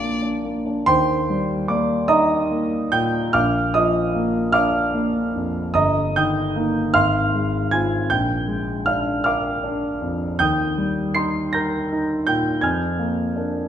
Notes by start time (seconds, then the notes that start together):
Already playing: A#1 D4 F4 D5 F5
0.00 A#3
0.22 D4
0.45 A#3
0.66 D4
0.86 D#2 C5 G5 C6
1.30 G3
1.68 A#3 D5 D6
2.08 D#4 D#5 A#5 D#6
2.51 A#3
2.92 A#2 G5 G6
3.33 A#1 F5 D6 F6
3.74 F3 D#5 D#6
4.15 A#3
4.52 D4 F5 D6 F6
4.94 A#3
5.36 F2
5.74 G1 D#5 A#5 D#6
6.16 D#3 G5 D#6 G6
6.56 A#3 D#4
6.94 G#1 F5 C6 F6
7.35 G#3
7.71 C4 F4 G#5 G#6
8.10 A#1 G5 G6
8.48 G#3
8.86 D4 F5 F6
9.24 A#4 F5 D6 F6
9.64 D4
10.02 F2
10.39 D#2 G5 D#6 G6
10.78 G3
11.14 D#4 C6 C7
11.53 A#4 A#5 G6 A#6
11.93 D#4
12.27 A#2 G5 G6
12.61 F2 G#5 F6 G#6
12.99 A#3
13.36 D4 A#4